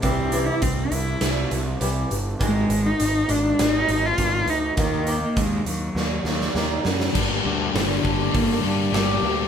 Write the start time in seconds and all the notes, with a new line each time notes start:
0.02 C2 C3 E3 G3 C4, kick, closed hi-hat
0.32 C3 E3 G3, closed hi-hat
0.46 E4
0.62 C2 C3 E3 C4, kick, closed hi-hat
0.91 C2 C3 E3 E4, closed hi-hat
1.21 C2 C3 E3, snare, closed hi-hat
1.51 C2 C3 E3, closed hi-hat
1.80 C2 C3 E3 G3, closed hi-hat
2.10 G1 C3 E3, closed hi-hat
2.39 G#1 G#2 D#3 G#3, kick, closed hi-hat
2.69 G#1 G#2 D#3, closed hi-hat
2.87 D#4
2.99 G#1 G#2 D#3, closed hi-hat
3.29 G#1 G#2 D#3 G#3 D4, closed hi-hat
3.59 G#1 D#4, snare, closed hi-hat
3.89 G#1 G#2 D#3, closed hi-hat
4.06 F4
4.18 G#1 G#2 D#3 G#3, kick, closed hi-hat
4.46 D2 G#2 D#3 D#4, closed hi-hat
4.77 D#2 D#3 A#3 D#4, kick, closed hi-hat
5.07 D#3 A#3 D#4, closed hi-hat
5.22 A#3
5.36 D#2 D#3 G#3 A#3, kick, closed hi-hat
5.65 D#2 D#3 F#3 A#3, closed hi-hat
5.95 D#2 D#3 A#3, snare
6.24 D#2 D#3 A#3, snare
6.41 snare
6.55 D#2 D#3 A#3 D#4, snare
6.85 F#2 D#3 A#3, snare
7.00 snare
7.13 G1 G2 D3 G3 A#3 D4, kick, crash
7.43 D2 G2 D3 G3 A#3 D4
7.72 G1 G2 D3 G3 A#3 D4, snare, open hi-hat
7.79 D3
8.01 G1 G2 D3 G3 A#3 D4, kick
8.05 D4
8.31 G1 G2 D3 G3 A#3 D4, kick, open hi-hat
8.35 A#3
8.60 G2 D3 G3 A#3 D4
8.64 G3 D4
8.91 G1 G2 D3 G3 A#3 D4 G4, snare, open hi-hat
9.22 D2 G2 D3 G3 A#3 D4